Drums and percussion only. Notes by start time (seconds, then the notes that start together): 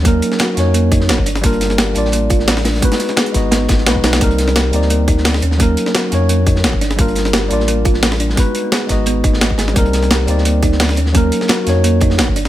0.05 kick, closed hi-hat
0.22 closed hi-hat
0.32 snare
0.39 snare, closed hi-hat
0.57 snare, closed hi-hat
0.74 closed hi-hat
0.92 kick, closed hi-hat
1.00 snare
1.09 snare, closed hi-hat
1.18 kick
1.26 closed hi-hat
1.35 snare, closed hi-hat
1.43 kick, closed hi-hat
1.53 closed hi-hat
1.61 snare, closed hi-hat
1.70 snare, closed hi-hat
1.78 snare, closed hi-hat
1.95 closed hi-hat
2.05 snare
2.12 closed hi-hat
2.30 kick, closed hi-hat
2.39 snare
2.47 snare, closed hi-hat, open hi-hat
2.57 snare
2.65 snare, closed hi-hat, open hi-hat
2.74 snare
2.82 kick, closed hi-hat
2.92 snare, closed hi-hat, open hi-hat
2.99 snare, closed hi-hat
3.09 snare, closed hi-hat
3.17 snare, closed hi-hat
3.26 closed hi-hat
3.34 kick, snare, closed hi-hat
3.51 snare, closed hi-hat
3.68 kick, snare, closed hi-hat
3.78 snare
3.86 snare, closed hi-hat
3.96 kick
4.03 snare, closed hi-hat
4.13 snare, closed hi-hat
4.21 kick, closed hi-hat
4.31 closed hi-hat
4.38 snare, closed hi-hat
4.48 snare, closed hi-hat
4.56 snare, closed hi-hat
4.73 closed hi-hat
4.82 snare
4.90 closed hi-hat
5.08 kick, closed hi-hat
5.18 snare
5.25 snare, closed hi-hat, open hi-hat
5.34 snare
5.42 closed hi-hat
5.51 snare
5.60 kick, closed hi-hat
5.77 closed hi-hat
5.86 snare
5.95 snare, closed hi-hat
6.12 closed hi-hat
6.29 closed hi-hat
6.46 kick, closed hi-hat
6.56 snare
6.64 snare, closed hi-hat
6.73 kick
6.81 snare, closed hi-hat
6.91 snare, closed hi-hat
6.99 kick, closed hi-hat
7.08 closed hi-hat
7.15 snare, closed hi-hat
7.25 snare, closed hi-hat
7.33 snare, closed hi-hat
7.51 closed hi-hat
7.60 snare
7.68 closed hi-hat
7.85 kick, closed hi-hat
7.94 snare
8.03 snare, closed hi-hat, open hi-hat
8.12 snare
8.20 closed hi-hat
8.29 snare
8.37 kick, closed hi-hat
8.55 closed hi-hat
8.72 snare, closed hi-hat
8.89 kick, snare, closed hi-hat
9.06 closed hi-hat
9.24 kick, closed hi-hat
9.33 snare
9.41 snare, closed hi-hat
9.50 kick
9.58 snare, closed hi-hat
9.68 snare
9.76 kick, closed hi-hat
9.85 closed hi-hat
9.93 snare, closed hi-hat
10.03 snare, closed hi-hat
10.10 snare, closed hi-hat
10.27 closed hi-hat
10.38 snare
10.45 closed hi-hat
10.62 kick, closed hi-hat
10.72 snare
10.80 snare, closed hi-hat, open hi-hat
10.89 snare
10.96 closed hi-hat
11.06 snare
11.15 kick, closed hi-hat
11.32 closed hi-hat
11.41 snare
11.48 snare, closed hi-hat
11.67 snare, closed hi-hat
11.84 closed hi-hat
12.01 kick, closed hi-hat
12.10 snare
12.18 snare, closed hi-hat
12.28 kick
12.36 closed hi-hat
12.45 snare, closed hi-hat